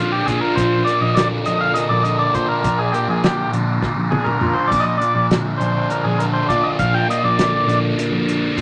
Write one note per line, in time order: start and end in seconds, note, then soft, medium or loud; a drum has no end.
0.00 0.20 A#1 medium
0.00 0.55 A#2 medium
0.00 0.57 D3 medium
0.00 0.85 A#3 medium
0.00 1.44 D4 medium
0.00 0.12 F4 medium
0.00 0.26 F4 medium
0.12 0.27 G4 medium
0.26 0.39 A#2 medium
0.26 2.34 F4 medium
0.26 0.40 G#4 medium
0.26 kick medium
0.26 closed hi-hat medium
0.41 0.57 A#4 medium
0.55 0.81 A#1 loud
0.55 2.63 A#2 medium
0.55 0.83 C5 medium
0.55 kick loud
0.55 closed hi-hat medium
0.85 1.75 A#3 medium
0.85 1.01 D5 medium
0.85 closed hi-hat medium
1.01 1.38 A#1 medium
1.01 1.16 D#5 medium
1.15 2.64 D3 medium
1.15 1.28 D5 loud
1.15 snare loud
1.15 closed hi-hat loud
1.44 1.71 A#1 medium
1.44 2.04 D4 medium
1.44 1.61 D#5 loud
1.44 closed hi-hat medium
1.61 1.74 F5 loud
1.74 2.93 A#3 medium
1.74 1.90 D#5 loud
1.74 closed hi-hat medium
1.89 2.27 A#1 medium
1.89 2.03 D5 medium
2.03 3.54 D4 medium
2.03 2.18 D#5 medium
2.03 closed hi-hat medium
2.19 2.34 D5 loud
2.34 2.47 A#2 medium
2.34 4.41 F4 medium
2.34 2.48 C5 medium
2.34 kick medium
2.34 closed hi-hat medium
2.48 2.79 A#4 medium
2.63 2.88 A#1 medium
2.63 4.71 A#2 medium
2.63 kick loud
2.63 closed hi-hat loud
2.78 2.94 G#4 medium
2.92 3.82 A#3 medium
2.92 3.08 G4 medium
2.92 closed hi-hat medium
3.08 3.45 A#1 medium
3.08 3.24 G#4 medium
3.23 4.71 D3 medium
3.23 3.51 G4 medium
3.23 snare loud
3.23 closed hi-hat medium
3.52 3.77 A#1 medium
3.52 4.12 D4 medium
3.52 closed hi-hat medium
3.82 5.01 A#3 medium
3.82 kick loud
3.82 snare medium
3.96 4.33 A#1 medium
4.10 5.59 D4 medium
4.10 4.27 G#4 medium
4.10 high tom medium
4.24 4.37 A#4 medium
4.24 mid tom medium
4.38 4.54 A#2 medium
4.38 6.49 F4 medium
4.38 4.53 A#4 medium
4.38 mid tom medium
4.53 4.70 C5 medium
4.68 4.96 A#1 medium
4.68 4.85 D5 loud
4.72 6.78 A#2 medium
4.72 kick loud
4.72 closed hi-hat medium
4.72 splash medium
4.80 4.98 D#5 loud
4.98 5.89 A#3 medium
4.98 5.27 D5 medium
5.02 closed hi-hat medium
5.15 5.52 A#1 medium
5.31 6.79 D3 medium
5.31 snare loud
5.31 closed hi-hat medium
5.58 5.85 A#1 medium
5.58 6.19 D4 medium
5.58 5.90 C5 medium
5.58 closed hi-hat medium
5.90 7.08 A#3 medium
5.90 6.06 A#4 medium
5.90 closed hi-hat medium
6.04 6.42 A#1 loud
6.04 6.20 G#4 medium
6.19 7.68 D4 medium
6.19 6.26 A#4 medium
6.19 closed hi-hat medium
6.33 6.48 C5 medium
6.49 6.62 A#2 medium
6.49 8.56 F4 medium
6.49 6.64 D5 medium
6.49 kick medium
6.49 closed hi-hat medium
6.63 6.70 D#5 medium
6.79 7.04 A#1 medium
6.79 8.61 A#2 medium
6.79 6.94 F5 medium
6.79 kick loud
6.79 closed hi-hat medium
6.94 7.08 G5 loud
7.08 7.98 A#3 medium
7.08 7.23 D#5 medium
7.08 snare soft
7.08 closed hi-hat medium
7.24 7.60 A#1 medium
7.24 7.79 D5 medium
7.38 8.61 D3 medium
7.38 snare loud
7.38 closed hi-hat loud
7.67 7.92 A#1 medium
7.67 8.27 D4 medium
7.67 closed hi-hat medium
7.98 8.61 A#3 medium
7.98 closed hi-hat loud
8.12 8.49 A#1 medium
8.27 8.61 D4 medium
8.27 closed hi-hat medium
8.56 8.61 A#2 medium
8.56 8.61 F4 medium
8.56 kick medium
8.56 closed hi-hat medium